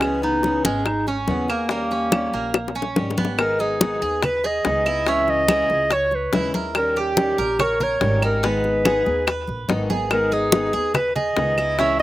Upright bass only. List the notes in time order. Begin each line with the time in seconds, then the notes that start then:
Already playing: C#2
0.64 G#1
1.28 D#2
2.33 A#1
2.97 G#1
4.02 D#2
4.65 C#2
5.70 C#2
6.33 D#2
7.39 A#1
8.01 G#1
9.06 D#2
9.48 A#1
9.69 G#1
10.73 D#2
11.37 C#2